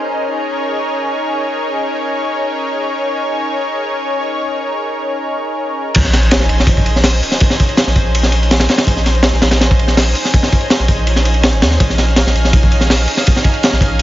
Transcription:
0.00 5.91 C#4 medium
0.00 5.91 D#4 medium
0.00 5.91 G#4 medium
0.00 5.91 A#4 medium
0.10 5.93 C#5 medium
5.95 6.40 A#1 loud
5.95 14.02 C#4 medium
5.95 14.02 D#4 medium
5.95 14.02 G#4 medium
5.95 11.78 C5 medium
5.95 kick loud
5.95 crash medium
5.95 ride medium
5.95 sub drop medium
6.04 snare soft
6.13 snare soft
6.13 ride medium
6.23 ride soft
6.31 snare loud
6.31 ride loud
6.40 6.49 A#1 medium
6.40 snare soft
6.49 7.21 A#1 medium
6.49 ride medium
6.60 snare soft
6.67 kick loud
6.67 ride medium
6.77 kick medium
6.86 ride medium
6.96 snare soft
7.04 snare loud
7.04 open hi-hat medium
7.23 ride medium
7.32 snare soft
7.40 kick loud
7.40 ride medium
7.50 snare medium
7.60 kick medium
7.60 ride medium
7.69 ride soft
7.77 snare loud
7.77 ride medium
7.87 7.95 A#1 medium
7.87 snare soft
7.96 8.68 A#1 medium
7.96 kick medium
7.96 ride medium
8.15 ride loud
8.23 snare soft
8.32 ride medium
8.43 ride soft
8.51 snare loud
8.51 ride medium
8.60 snare loud
8.60 ride medium
8.69 snare loud
8.69 ride medium
8.78 snare loud
8.78 ride medium
8.87 9.32 A#1 loud
8.87 kick loud
8.87 ride medium
8.97 snare soft
9.06 snare soft
9.06 ride medium
9.15 ride soft
9.23 snare loud
9.23 ride loud
9.33 9.41 A#1 medium
9.33 snare soft
9.42 10.14 A#1 medium
9.42 snare loud
9.42 ride medium
9.51 snare loud
9.51 ride medium
9.61 snare loud
9.61 ride medium
9.71 kick loud
9.79 ride medium
9.88 snare soft
9.97 snare loud
9.97 open hi-hat medium
10.15 ride medium
10.25 snare soft
10.34 kick loud
10.34 ride medium
10.43 snare medium
10.52 kick medium
10.52 ride medium
10.61 ride soft
10.70 snare loud
10.70 ride medium
10.79 10.88 A#1 medium
10.79 snare soft
10.88 11.54 A#1 medium
10.88 kick loud
10.88 ride medium
11.07 ride medium
11.16 snare soft
11.25 ride medium
11.34 ride soft
11.43 snare loud
11.43 ride medium
11.53 11.63 G#1 loud
11.53 ride soft
11.61 11.78 D#2 loud
11.61 snare loud
11.61 ride medium
11.71 snare soft
11.80 12.25 A#1 loud
11.80 14.02 F5 medium
11.80 kick loud
11.80 ride medium
11.90 snare soft
11.98 snare soft
11.98 ride medium
12.08 ride soft
12.16 snare loud
12.16 ride medium
12.26 12.34 A#1 loud
12.26 snare medium
12.35 13.07 A#1 medium
12.35 ride medium
12.45 snare soft
12.53 kick loud
12.53 ride medium
12.63 kick medium
12.72 ride medium
12.81 snare medium
12.90 snare loud
12.90 open hi-hat medium
13.08 ride medium
13.17 snare soft
13.27 kick loud
13.27 ride medium
13.36 snare medium
13.44 kick medium
13.44 ride medium
13.54 ride soft
13.63 snare loud
13.63 ride medium
13.72 13.80 A#1 medium
13.72 snare soft
13.81 14.02 A#1 medium
13.81 kick medium
13.81 ride medium

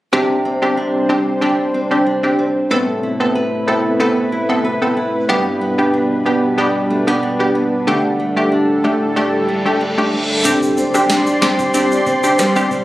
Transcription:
0.13 2.71 C3 medium
0.13 5.25 C3 medium
0.13 2.68 G3 medium
0.13 0.58 C4 medium
0.13 0.58 D4 medium
0.13 2.68 D4 medium
0.13 0.58 G4 loud
0.13 2.68 C5 medium
0.45 1.09 C4 medium
0.62 1.06 C4 medium
0.62 1.06 D4 medium
0.62 1.06 G4 medium
0.77 1.41 D4 medium
1.09 1.39 C4 medium
1.09 1.74 C4 medium
1.09 1.39 D4 medium
1.09 1.40 G4 medium
1.41 1.87 C4 medium
1.41 1.87 D4 medium
1.41 2.05 D4 medium
1.41 1.87 G4 medium
1.74 2.38 C4 medium
1.91 2.08 C4 medium
1.91 2.09 D4 medium
1.91 2.09 G4 medium
2.06 2.78 D4 medium
2.23 2.41 C4 medium
2.23 2.41 D4 medium
2.23 2.41 G4 medium
2.39 3.38 C4 medium
2.71 5.29 A2 medium
2.71 5.27 A3 medium
2.71 3.16 B3 medium
2.71 3.16 C4 medium
2.71 5.27 E4 medium
2.71 3.16 A4 loud
2.71 7.83 B4 medium
3.03 3.66 E4 medium
3.20 3.64 B3 medium
3.20 3.64 C4 medium
3.20 3.64 A4 medium
3.35 3.99 B4 medium
3.67 3.97 B3 medium
3.67 3.98 C4 medium
3.67 4.31 E4 medium
3.67 3.98 A4 medium
4.00 4.45 B3 medium
4.00 4.45 C4 medium
4.00 4.45 A4 loud
4.00 4.64 B4 medium
4.32 4.96 E4 medium
4.49 4.66 B3 medium
4.49 4.67 C4 medium
4.49 4.67 A4 medium
4.64 6.93 B4 medium
4.82 4.99 B3 medium
4.82 4.99 C4 medium
4.82 4.99 A4 medium
4.97 5.36 E4 medium
5.29 7.87 G2 medium
5.29 7.85 B2 medium
5.29 7.85 G3 medium
5.29 5.74 B3 loud
5.29 5.74 D4 medium
5.29 10.41 D4 medium
5.29 5.75 G4 loud
5.61 6.25 B3 medium
5.78 6.22 B3 medium
5.78 6.22 D4 medium
5.78 6.22 G4 medium
5.94 6.58 D4 medium
6.26 6.56 B3 medium
6.26 6.90 B3 medium
6.26 6.56 D4 medium
6.26 6.56 G4 medium
6.58 7.03 B3 medium
6.58 7.03 D4 medium
6.58 7.22 D4 medium
6.58 7.03 G4 loud
6.90 7.08 A3 medium
7.07 7.25 B3 medium
7.07 7.54 B3 soft
7.07 7.25 D4 medium
7.07 7.25 G4 medium
7.23 8.51 D4 medium
7.39 7.57 B3 medium
7.39 7.57 D4 medium
7.39 7.57 G4 medium
7.55 7.94 B3 medium
7.87 10.43 A2 medium
7.87 10.81 D3 medium
7.87 10.43 G3 medium
7.87 8.32 A3 medium
7.87 8.33 D4 medium
7.87 8.33 G4 loud
7.87 10.43 A4 medium
8.20 8.83 A3 medium
8.36 8.80 A3 medium
8.36 8.80 D4 medium
8.36 8.81 G4 medium
8.52 9.16 D4 medium
8.84 9.47 A3 medium
8.84 9.14 A3 medium
8.84 9.14 D4 medium
8.84 9.14 G4 medium
9.16 9.61 A3 medium
9.16 9.80 D4 medium
9.16 9.62 D4 medium
9.16 9.62 G4 loud
9.16 reverse cymbal medium
9.48 10.12 A3 medium
9.65 9.83 A3 medium
9.65 9.83 D4 medium
9.65 9.83 G4 medium
9.81 10.81 D4 medium
9.98 10.15 A3 medium
9.98 10.15 D4 medium
9.98 10.15 G4 medium
10.13 10.52 A3 medium
10.45 10.84 C2 loud
10.45 10.90 C4 medium
10.45 10.90 D4 medium
10.45 10.91 G4 loud
10.45 12.84 G4 medium
10.45 12.84 D5 medium
10.45 12.84 C6 medium
10.45 kick loud
10.45 closed hi-hat medium
10.45 shaker loud
10.62 shaker soft
10.78 11.42 C4 medium
10.78 shaker medium
10.94 11.32 B1 medium
10.94 11.38 C4 medium
10.94 11.38 D4 medium
10.94 11.39 G4 medium
10.94 shaker medium
11.10 11.73 D4 medium
11.10 snare loud
11.10 closed hi-hat medium
11.10 shaker medium
11.27 shaker medium
11.42 11.68 C2 loud
11.42 11.72 C4 medium
11.42 12.06 C4 medium
11.42 11.72 D4 medium
11.42 11.72 G4 medium
11.42 snare loud
11.42 shaker soft
11.59 kick loud
11.59 shaker medium
11.74 12.00 C2 loud
11.74 12.19 C4 medium
11.74 12.84 D4 medium
11.74 12.20 D4 medium
11.74 12.20 G4 loud
11.74 closed hi-hat medium
11.74 shaker medium
11.92 shaker medium
12.06 12.71 C4 medium
12.06 kick medium
12.06 shaker medium
12.23 12.41 C4 medium
12.23 12.41 D4 medium
12.23 12.41 G4 medium
12.23 shaker medium
12.39 12.84 G3 medium
12.39 cross-stick loud
12.39 snare medium
12.39 closed hi-hat medium
12.39 shaker medium
12.56 12.73 C4 medium
12.56 12.73 D4 medium
12.56 12.73 G4 medium
12.56 shaker medium
12.71 12.84 E1 medium
12.71 12.84 C4 medium
12.71 kick loud
12.71 shaker medium

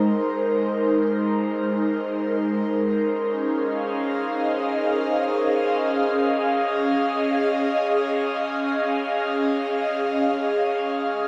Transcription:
0.00 2.85 G#3 medium
0.00 5.24 D#4 medium
0.00 6.14 A#4 medium
0.00 6.16 C5 medium
2.84 11.12 C#4 medium
3.13 11.28 G#4 medium
3.30 11.28 F5 medium
3.45 11.28 D#5 medium
11.11 11.28 G#3 medium
11.11 11.28 G#4 medium
11.11 11.28 G#6 medium

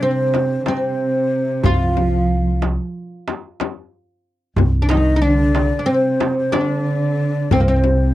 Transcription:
0.00 0.59 C3 medium
0.00 0.67 C4 medium
0.00 0.66 C5 medium
0.34 darbuka tek medium
0.34 frame drum medium
0.60 0.67 D3 soft
0.66 1.65 C3 medium
0.66 1.61 C4 medium
0.66 1.68 C5 medium
0.66 darbuka tek medium
0.66 frame drum medium
1.63 2.75 C2 loud
1.63 2.63 F3 medium
1.63 2.59 F4 loud
1.63 2.63 F5 medium
1.63 darbuka dum medium
1.63 frame drum medium
1.97 frame drum medium
2.62 darbuka tek medium
2.62 frame drum medium
3.28 darbuka tek medium
3.28 frame drum medium
3.60 darbuka tek medium
3.60 frame drum medium
4.56 5.68 C2 loud
4.56 darbuka dum medium
4.56 frame drum medium
4.82 4.88 D4 medium
4.89 5.21 D#3 medium
4.89 5.15 D#4 medium
4.89 5.25 D#5 medium
4.89 darbuka tek medium
4.89 frame drum medium
5.16 5.21 D#4 medium
5.22 5.35 D#3 medium
5.22 5.78 D4 medium
5.22 5.91 D5 loud
5.35 5.84 D3 medium
5.55 darbuka tek medium
5.55 frame drum medium
5.79 5.87 D4 medium
5.86 6.54 C3 medium
5.86 6.48 C4 medium
5.86 6.38 C5 medium
6.20 darbuka tek medium
6.20 frame drum medium
6.38 6.57 C5 medium
6.52 7.52 D3 medium
6.52 7.52 D4 medium
6.52 7.52 D5 medium
6.52 darbuka tek medium
6.52 frame drum medium
7.51 8.14 C2 loud
7.51 7.64 C3 medium
7.51 7.59 C4 medium
7.51 7.66 C5 medium
7.51 frame drum medium
7.51 darbuka dum medium
7.60 7.66 A#3 medium
7.65 8.14 C3 medium
7.65 8.14 C4 medium
7.65 8.14 C5 medium
7.84 frame drum medium

